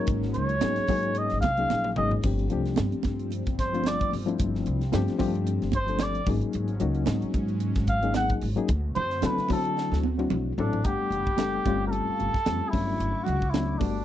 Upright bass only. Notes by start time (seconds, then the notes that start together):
0.08 G#1
0.36 C#2
0.63 G#2
0.78 muted upright bass stroke
0.89 G#2
1.32 G#1
1.43 C2
1.71 A#1
1.98 G#1
2.23 G1
2.53 C2
2.79 G2
2.93 muted upright bass stroke
3.05 G2
3.47 G1
4.13 G1
4.40 G1
4.67 C2
4.94 G2
5.09 muted upright bass stroke
5.21 G2
5.62 G1
6.27 G#1
6.55 G#1
6.81 C#2
7.07 G#2
7.23 muted upright bass stroke
7.34 G#2
7.76 G#1
8.42 G#1
8.69 D2
8.96 F#2
9.23 D3
9.37 muted upright bass stroke
9.50 D3
9.92 D2
10.31 B1
10.58 A1
10.85 G1
11.10 F#1
11.66 G1
12.09 muted upright bass stroke
12.21 G1
12.35 muted upright bass stroke
12.47 F2
12.74 G1
13.00 G1
13.28 C#2
13.81 G1